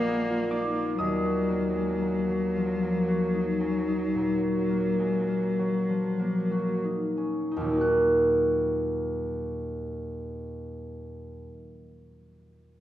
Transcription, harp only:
Already playing: A#1 G#3 B3 F4 A#4 D5 D#5 F5 G#5 A#5 D6 F6
0.09 G#4
0.30 F4
0.51 D#4 D5 D6
0.75 F4
0.98 D#2 D#5 D#6
1.24 F#4
1.49 A#3
1.75 G#3
2.02 A#3
2.29 F#3
2.56 F3
2.82 A#3
3.08 F#4
3.34 D#4
3.60 C#4
3.88 D#4
4.14 A#2
4.43 F#4
4.70 A#3
5.00 G#3
5.28 A#3
5.59 F#3
5.89 F3
6.20 A#3
6.51 F#4
6.85 D#4
7.17 C#4
7.51 D#4
7.56 D#2 A#2
7.64 F#3
7.69 A#3 D#4
7.77 F#4 F#6

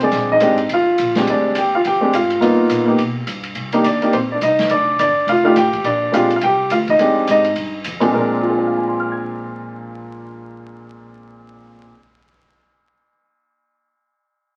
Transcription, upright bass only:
Already playing: C2
0.13 A#1
0.42 G#1
0.70 G1
0.99 A#1
1.27 D2
1.56 D#2
1.85 F2
2.14 G#2
2.40 G2
2.69 A#2
2.98 B2
3.27 G2
3.55 C2
3.85 D#2
4.13 A#1
4.42 C2
4.71 F1
4.99 G1
5.16 muted upright bass stroke
5.27 F1
5.57 A1
5.84 A#1
6.14 A#1
6.43 C2
6.71 D2
6.99 F2
7.28 G#2
7.57 G2
7.85 F2
8.14 A#1

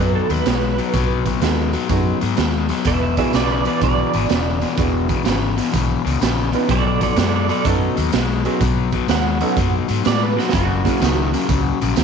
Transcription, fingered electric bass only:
Already playing: F#2
0.30 D#2
0.46 B1
0.94 B1
1.42 D#2
1.90 F#2
2.22 G#2
2.38 D#2
2.86 E1
3.34 B1
3.82 B1
4.14 G#1
4.30 E1
4.78 E1
5.27 G#1
5.74 B1
6.06 C#2
6.21 A#1
6.69 B1
7.17 F#2
7.65 F#2
7.98 D#2
8.14 B1
8.61 B1
9.10 D#2
9.57 F#2
9.90 G#2
10.06 A2
10.54 F#1
11.02 C#2
11.49 C#2
11.82 A#1
11.97 D#2

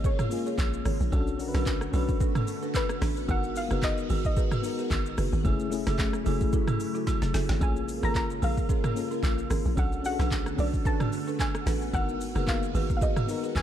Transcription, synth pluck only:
0.06 C#5
2.76 B4
3.30 F#5
3.57 F5
3.84 D#5
4.26 D#5
7.63 G#5
8.04 A#5
8.16 A#5
8.44 F5
9.79 F#5
10.06 F#5
10.60 D5
10.86 A5
11.40 G#5
11.94 F#5
12.48 F5
12.97 F5
13.03 D#5
13.57 G#5

